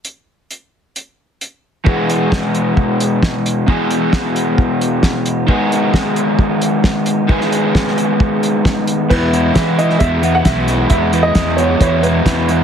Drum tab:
CC |----------------|----------------|----------------|----------------|
HH |x---x---x---x---|--x---x---x---x-|--x---x---x---x-|--x---x---x---x-|
SD |----------------|----o-------o---|----o-------o---|----o-------o---|
BD |----------------|o---o---o---o---|o---o---o---o---|o---o---o---o---|

CC |----------------|x---------------|----------------|
HH |--x---x---x---x-|--x-x-x-x-x-x-x-|x-x-x-x-x-x-x-x-|
SD |-o--oo------o---|----o--o----o-o-|----o-------o---|
BD |o---o---o---o---|o---o---o---o---|o---o---o---o---|